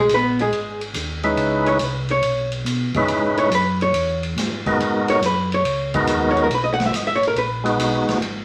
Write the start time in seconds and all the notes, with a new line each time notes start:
0.00 G#3 G#4
0.09 A#1, hi-hat pedal, ride
0.14 B3 B4
0.39 G#3 G#4, ride
0.51 G#1, ride
0.81 ride
0.94 D#2, hi-hat pedal, ride
1.23 G#3 C#4 D#4 E4 B4, ride
1.37 C#2, ride
1.66 C#5, ride
1.79 C2, hi-hat pedal, ride
1.83 B4
2.08 C#5, ride
2.22 B1, ride
2.52 ride
2.65 B2, hi-hat pedal, ride
2.94 B2 G#3 C#4 D#4 E4 B4, kick, ride
3.08 G#2, ride
3.37 C#5, ride
3.51 F#2 B4, hi-hat pedal, ride
3.81 C#5, ride
3.93 E2, ride
4.23 ride
4.36 G#2, snare, hi-hat pedal, ride
4.66 G#3 B3 D#4 F#4 A#4, kick, ride
4.79 G#2, ride
5.08 C#5, ride
5.22 F#2 B4, hi-hat pedal, ride
5.52 C#5, ride
5.64 C#2, ride
5.94 G#3 B3 D#4 F#4 A#4, kick, ride
6.07 D#2, hi-hat pedal, ride
6.31 C#5
6.37 ride
6.44 A#4
6.49 B1, ride
6.54 B4
6.64 D#5
6.74 F#5
6.80 snare, ride
6.86 E5
6.92 G#1 D#5, hi-hat pedal, ride
7.07 E5
7.15 C#5
7.23 ride
7.27 A#4
7.35 A#1 B4, ride
7.64 G#3 B3 D#4 F#4, ride
7.78 B1, hi-hat pedal, ride
8.06 B1, snare, ride
8.20 G#1, ride